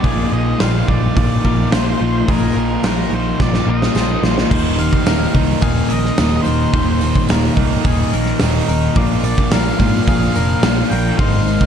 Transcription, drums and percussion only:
0.04 kick loud
0.04 open hi-hat medium
0.60 snare loud
0.60 open hi-hat medium
0.60 tambourine medium
0.88 kick medium
1.17 kick loud
1.17 open hi-hat medium
1.45 kick medium
1.72 snare loud
1.72 open hi-hat medium
1.72 tambourine medium
2.28 kick loud
2.28 open hi-hat medium
2.83 snare loud
2.83 open hi-hat medium
2.83 tambourine medium
3.40 kick loud
3.40 snare medium
3.54 snare medium
3.82 snare medium
3.95 snare medium
3.95 tambourine medium
4.24 snare medium
4.38 snare medium
4.51 kick loud
4.51 crash loud
4.78 open hi-hat medium
4.78 tambourine medium
4.93 kick medium
5.06 snare loud
5.06 open hi-hat medium
5.06 tambourine loud
5.35 kick medium
5.35 open hi-hat medium
5.62 kick loud
5.62 open hi-hat medium
5.62 tambourine medium
5.90 open hi-hat medium
5.90 tambourine medium
6.05 snare soft
6.18 snare loud
6.18 open hi-hat medium
6.18 tambourine loud
6.45 open hi-hat medium
6.45 tambourine medium
6.74 kick loud
6.74 open hi-hat medium
7.01 open hi-hat medium
7.01 tambourine medium
7.15 kick medium
7.28 snare loud
7.28 open hi-hat medium
7.28 tambourine loud
7.44 snare soft
7.57 kick medium
7.57 open hi-hat medium
7.84 kick loud
7.84 open hi-hat medium
7.84 tambourine medium
8.13 open hi-hat medium
8.13 tambourine medium
8.26 snare soft
8.39 snare loud
8.39 open hi-hat loud
8.39 tambourine loud
8.68 open hi-hat medium
8.68 tambourine medium
8.95 kick loud
8.95 open hi-hat medium
9.24 open hi-hat medium
9.24 tambourine medium
9.38 kick medium
9.52 snare loud
9.52 open hi-hat medium
9.52 tambourine medium
9.79 kick medium
9.79 open hi-hat medium
10.07 kick loud
10.07 open hi-hat medium
10.07 tambourine medium
10.35 open hi-hat medium
10.35 tambourine medium
10.63 snare loud
10.63 open hi-hat medium
10.63 tambourine medium
10.91 open hi-hat medium
10.91 tambourine medium
11.19 kick loud
11.19 open hi-hat medium
11.19 tambourine soft
11.47 open hi-hat medium
11.47 tambourine medium
11.61 kick medium

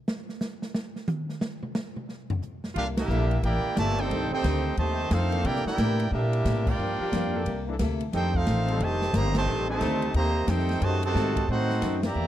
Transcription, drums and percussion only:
0.08 snare loud
0.29 snare soft
0.41 snare medium
0.41 hi-hat pedal medium
0.62 snare medium
0.75 snare loud
0.96 snare soft
1.08 hi-hat pedal medium
1.08 high tom loud
1.29 snare soft
1.41 snare loud
1.63 mid tom medium
1.75 snare loud
1.75 hi-hat pedal medium
1.96 mid tom medium
2.09 snare soft
2.30 floor tom loud
2.42 floor tom soft
2.42 hi-hat pedal medium
2.64 snare soft
2.76 kick soft
2.76 ride medium
2.97 snare loud
2.97 ride medium
3.10 hi-hat pedal medium
3.31 ride medium
3.43 kick soft
3.43 ride medium
3.77 kick soft
3.77 snare medium
3.77 hi-hat pedal medium
3.77 ride medium
3.98 ride medium
4.10 kick soft
4.10 ride medium
4.44 kick soft
4.44 snare medium
4.44 hi-hat pedal medium
4.44 ride medium
4.77 kick soft
4.77 ride medium
5.11 kick soft
5.11 snare medium
5.11 hi-hat pedal medium
5.11 ride medium
5.32 ride medium
5.44 kick soft
5.44 ride medium
5.56 snare soft
5.67 snare medium
5.78 kick soft
5.78 snare medium
5.78 hi-hat pedal soft
5.78 ride medium
6.00 ride medium
6.11 kick soft
6.33 ride medium
6.45 kick soft
6.45 snare medium
6.45 hi-hat pedal medium
6.45 ride medium
6.67 kick loud
6.67 crash medium
7.12 kick soft
7.12 snare medium
7.12 hi-hat pedal medium
7.12 ride medium
7.46 kick soft
7.46 ride medium
7.79 kick soft
7.79 snare medium
7.79 hi-hat pedal medium
7.79 ride medium
8.01 ride medium
8.13 kick soft
8.13 snare soft
8.13 ride medium
8.34 kick medium
8.47 snare medium
8.47 hi-hat pedal medium
8.47 ride medium
8.68 ride medium
8.80 kick soft
8.80 ride medium
9.02 snare medium
9.14 kick soft
9.14 snare medium
9.14 hi-hat pedal medium
9.14 ride medium
9.35 snare loud
9.35 ride medium
9.80 kick soft
9.80 snare medium
9.80 hi-hat pedal medium
9.80 ride medium
10.02 ride medium
10.14 kick soft
10.14 ride medium
10.48 kick soft
10.48 snare medium
10.48 hi-hat pedal medium
10.48 ride medium
10.59 snare soft
10.69 snare medium
10.69 ride medium
10.81 kick soft
10.81 ride medium
11.03 ride medium
11.15 kick soft
11.15 snare medium
11.15 hi-hat pedal medium
11.36 kick medium
11.36 ride medium
11.48 kick soft
11.70 snare soft
11.82 kick soft
11.82 snare medium
11.82 hi-hat pedal medium
11.82 ride loud
12.03 snare medium
12.03 ride medium

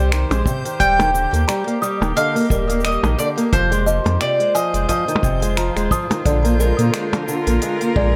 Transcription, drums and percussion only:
0.12 finger snap loud
0.12 open hi-hat medium
0.12 shaker soft
0.31 finger snap soft
0.31 open hi-hat soft
0.31 percussion blips medium
0.31 shaker soft
0.46 kick loud
0.46 shaker medium
0.65 open hi-hat soft
0.65 shaker soft
0.80 kick loud
0.80 open hi-hat soft
0.80 shaker soft
1.00 open hi-hat soft
1.00 percussion blips medium
1.00 shaker soft
1.15 shaker medium
1.34 open hi-hat soft
1.34 shaker soft
1.49 finger snap medium
1.49 open hi-hat medium
1.49 shaker soft
1.68 open hi-hat soft
1.83 shaker medium
2.02 percussion blips medium
2.02 shaker soft
2.17 open hi-hat medium
2.17 shaker soft
2.36 open hi-hat soft
2.36 shaker soft
2.38 open hi-hat soft
2.40 open hi-hat soft
2.42 open hi-hat soft
2.46 open hi-hat soft
2.48 kick loud
2.48 open hi-hat soft
2.48 shaker medium
2.70 open hi-hat soft
2.70 shaker soft
2.80 shaker soft
2.85 finger snap loud
2.85 open hi-hat medium
2.85 shaker soft
2.91 shaker soft
3.04 percussion blips medium
3.04 shaker soft
3.19 shaker medium
3.38 open hi-hat soft
3.38 shaker soft
3.53 kick loud
3.53 open hi-hat medium
3.53 shaker soft
3.72 open hi-hat soft
3.72 shaker soft
3.87 shaker medium
4.06 open hi-hat soft
4.06 percussion blips medium
4.21 finger snap loud
4.21 open hi-hat medium
4.21 shaker soft
4.40 open hi-hat soft
4.56 shaker medium
4.74 open hi-hat soft
4.74 shaker soft
4.89 kick medium
4.89 open hi-hat medium
4.89 shaker soft
5.08 open hi-hat soft
5.08 shaker soft
5.16 percussion blips medium
5.23 kick loud
5.23 shaker medium
5.42 open hi-hat soft
5.42 shaker soft
5.57 finger snap loud
5.57 open hi-hat medium
5.57 shaker soft
5.77 finger snap soft
5.77 open hi-hat soft
5.77 shaker soft
5.91 kick loud
5.91 shaker medium
6.11 open hi-hat soft
6.11 percussion blips medium
6.11 shaker soft
6.26 kick loud
6.26 open hi-hat medium
6.26 shaker soft
6.45 open hi-hat soft
6.45 shaker soft
6.60 shaker medium
6.79 open hi-hat soft
6.79 shaker soft
6.94 finger snap loud
6.94 open hi-hat medium
6.94 shaker soft
7.13 open hi-hat soft
7.13 percussion blips medium
7.28 shaker medium
7.47 open hi-hat soft
7.47 shaker soft
7.62 open hi-hat medium
7.62 shaker soft
7.81 open hi-hat soft
7.81 shaker soft
7.96 kick loud

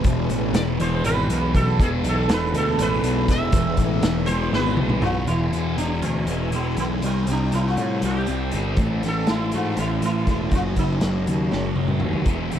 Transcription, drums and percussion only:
0.04 kick loud
0.04 closed hi-hat medium
0.30 closed hi-hat medium
0.54 snare loud
0.54 closed hi-hat medium
0.80 closed hi-hat medium
1.04 closed hi-hat medium
1.30 closed hi-hat medium
1.55 kick medium
1.55 closed hi-hat medium
1.80 kick loud
1.80 closed hi-hat medium
2.04 closed hi-hat medium
2.29 snare loud
2.29 closed hi-hat loud
2.54 closed hi-hat medium
2.79 closed hi-hat loud
3.04 closed hi-hat medium
3.28 kick medium
3.28 snare soft
3.28 closed hi-hat medium
3.52 kick loud
3.52 closed hi-hat loud
3.77 kick medium
3.77 closed hi-hat medium
4.03 snare loud
4.03 closed hi-hat medium
4.27 closed hi-hat medium
4.53 snare medium
4.77 high tom medium
4.89 mid tom medium
5.02 mid tom loud
5.27 closed hi-hat medium
5.53 closed hi-hat soft
5.78 closed hi-hat medium
6.02 closed hi-hat medium
6.27 closed hi-hat medium
6.52 closed hi-hat medium
6.77 closed hi-hat medium
7.02 closed hi-hat medium
7.27 closed hi-hat medium
7.52 closed hi-hat medium
7.77 closed hi-hat medium
8.02 closed hi-hat medium
8.27 closed hi-hat soft
8.51 closed hi-hat medium
8.76 kick medium
8.76 closed hi-hat medium
9.03 snare soft
9.03 closed hi-hat medium
9.27 snare loud
9.27 closed hi-hat medium
9.52 closed hi-hat medium
9.77 closed hi-hat medium
10.02 closed hi-hat medium
10.27 kick medium
10.27 snare soft
10.27 closed hi-hat medium
10.51 kick medium
10.51 closed hi-hat medium
10.76 kick medium
10.76 closed hi-hat medium
11.01 snare medium
11.01 closed hi-hat medium
11.27 closed hi-hat medium
11.52 snare soft
11.76 high tom medium
11.88 mid tom medium
12.00 mid tom medium
12.13 floor tom medium
12.25 kick medium
12.25 closed hi-hat medium
12.51 closed hi-hat medium

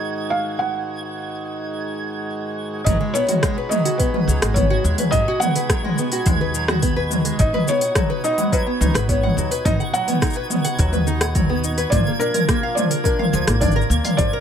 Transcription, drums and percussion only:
2.86 kick loud
2.86 mid tom medium
2.86 open hi-hat soft
2.86 shaker soft
3.15 shaker medium
3.29 mid tom medium
3.29 open hi-hat medium
3.29 shaker soft
3.43 kick loud
3.43 cross-stick medium
3.43 open hi-hat soft
3.43 shaker soft
3.71 mid tom medium
3.71 shaker medium
3.85 open hi-hat medium
3.85 shaker soft
4.00 kick medium
4.00 open hi-hat soft
4.00 shaker soft
4.14 mid tom medium
4.29 shaker medium
4.42 cross-stick medium
4.42 open hi-hat medium
4.42 shaker soft
4.56 kick loud
4.56 mid tom medium
4.56 open hi-hat soft
4.56 shaker soft
4.85 shaker medium
4.98 mid tom medium
4.98 open hi-hat medium
4.98 shaker soft
5.12 kick loud
5.12 open hi-hat soft
5.12 shaker soft
5.41 mid tom medium
5.41 shaker medium
5.56 open hi-hat medium
5.56 shaker soft
5.70 kick loud
5.70 cross-stick medium
5.70 open hi-hat soft
5.70 shaker soft
5.84 mid tom medium
5.98 shaker medium
6.12 open hi-hat medium
6.12 shaker soft
6.26 kick loud
6.26 mid tom medium
6.26 open hi-hat soft
6.26 shaker soft
6.55 shaker medium
6.68 cross-stick medium
6.68 mid tom medium
6.68 shaker soft
6.82 kick loud
6.82 open hi-hat medium
6.82 shaker soft
7.11 mid tom medium
7.11 shaker medium
7.25 open hi-hat medium
7.25 shaker soft
7.39 kick loud
7.39 open hi-hat soft
7.39 shaker soft
7.53 mid tom medium
7.68 shaker medium
7.81 open hi-hat medium
7.81 shaker soft
7.95 kick loud
7.95 cross-stick medium
7.95 mid tom medium
7.95 open hi-hat soft
7.95 shaker soft
8.24 shaker medium
8.38 mid tom medium
8.38 open hi-hat medium
8.38 shaker soft
8.40 mid tom medium
8.43 mid tom medium
8.46 mid tom soft
8.48 mid tom soft
8.50 kick loud
8.50 mid tom soft
8.50 open hi-hat soft
8.50 shaker soft
8.81 mid tom medium
8.81 shaker medium
8.95 cross-stick medium
8.95 open hi-hat medium
9.09 kick loud
9.09 open hi-hat soft
9.09 shaker soft
9.23 mid tom medium
9.38 shaker medium
9.52 open hi-hat medium
9.52 shaker soft
9.65 kick loud
9.65 mid tom medium
9.65 open hi-hat soft
9.65 shaker soft
9.80 shaker soft
9.94 shaker medium
10.08 mid tom medium
10.08 open hi-hat soft
10.08 shaker soft
10.22 kick loud
10.22 cross-stick medium
10.22 open hi-hat soft
10.22 shaker soft
10.26 shaker soft
10.30 shaker soft
10.33 shaker soft
10.50 mid tom medium
10.50 shaker medium
10.65 open hi-hat medium
10.65 shaker soft
10.79 kick loud
10.79 open hi-hat soft
10.79 shaker soft
10.92 mid tom medium
10.92 shaker soft
11.07 shaker medium
11.21 cross-stick medium
11.21 open hi-hat medium
11.35 kick loud
11.35 mid tom medium
11.35 open hi-hat soft
11.35 shaker soft
11.64 shaker medium
11.78 open hi-hat medium
11.78 shaker soft
11.92 kick loud
11.92 mid tom medium
11.92 open hi-hat soft
11.92 shaker soft
12.21 shaker medium
12.34 mid tom medium
12.34 open hi-hat medium
12.34 shaker soft
12.49 kick loud
12.49 cross-stick medium
12.49 open hi-hat soft
12.49 shaker soft
12.77 mid tom medium
12.77 shaker medium
12.91 open hi-hat medium
12.91 shaker soft
13.05 kick loud
13.05 open hi-hat soft
13.05 shaker soft
13.19 mid tom medium
13.33 shaker medium
13.47 cross-stick medium
13.47 open hi-hat medium
13.47 shaker soft
13.61 kick loud
13.61 mid tom medium
13.61 open hi-hat soft
13.61 shaker soft
13.72 shaker soft
13.81 shaker soft
13.91 shaker medium
14.05 mid tom medium
14.05 open hi-hat medium
14.05 shaker soft
14.19 kick loud
14.19 open hi-hat soft
14.19 shaker soft

